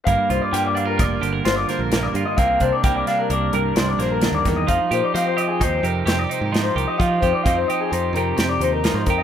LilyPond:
<<
  \new Staff \with { instrumentName = "Clean electric guitar" } { \time 5/4 \key g \phrygian \tempo 4 = 130 f''8 c''16 d''16 g''16 d''16 f''16 bes'16 d''8 bes'8 c''16 d''16 c''16 bes'8 d''16 bes'16 ees''16 | f''8 c''16 d''16 g''16 d''16 f''16 bes'16 d''8 bes'8 c''16 d''16 c''16 bes'8 d''16 bes'16 ees''16 | f''8 c''16 d''16 f''16 c''16 ees''16 aes'16 c''8 bes'8 c''16 d''16 c''16 bes'8 c''16 bes'16 ees''16 | f''8 c''16 d''16 f''16 c''16 ees''16 aes'16 c''8 bes'8 c''16 d''16 c''16 bes'8 c''16 bes'16 ees''16 | }
  \new Staff \with { instrumentName = "Clean electric guitar" } { \time 5/4 \key g \phrygian << { bes8 f'8 bes8 d'16 f'16 bes8 g'16 bes'16 f'8 bes8 bes8 f'8 | bes8 d'8 bes8 d'8 bes8 bes'8 d'8 bes4. | ees'8 g'8 ees'8 g'8 ees'8 g'8 g'8 ees'8 ees'8 g'8 | ees'8 g'8 ees'8 g'8 ees'8 g'8 g'8 ees'8 ees'8 g'8 | } \\ { g,4 g4. d4. g,4 | c4 g4. g,4. d8 ees8 | f4 c'4. c4. f4 | f4 c'4. c4. f4 | } >> }
  \new Staff \with { instrumentName = "Picked electric bass" } { \clef bass \time 5/4 \key g \phrygian g,,16 r16 c,16 r16 g,4 f,,8 g,,8 g,,8 r16 bes,,8. g,16 r16 | c,8 c,16 r16 c,8 r8 c,8 c,8 c,8 bes,,8. ees,16 e,8 | f,16 r16 bes,16 r16 f4 ees,8 f,8 f,8 r16 aes,8. c,16 r16 | f8 f,16 r16 f,8 r8 f,8 f,8 f,8 ees,8. aes,16 f,8 | }
  \new DrumStaff \with { instrumentName = "Drums" } \drummode { \time 5/4 <hh bd>8 hh8 <hh sn>8 hh8 <hh bd sn>8 hh8 <hh sn>8 <hh sn>8 <hh sn>8 hh8 | <hh bd>8 <hh bd>8 <hh bd>8 <hh sn>8 hh8 hh8 <hh sn>8 <hh sn>8 <hh sn>8 <hh bd sn>8 | <hh bd>8 hh8 <hh sn>8 hh8 <hh bd>8 hh8 <hh sn>8 hh8 <hh sn>8 hh8 | <hh bd>8 <hh bd>8 <hh bd>8 hh8 hh8 hh8 <hh sn>8 hh8 <hh sn>8 <hh bd>8 | }
>>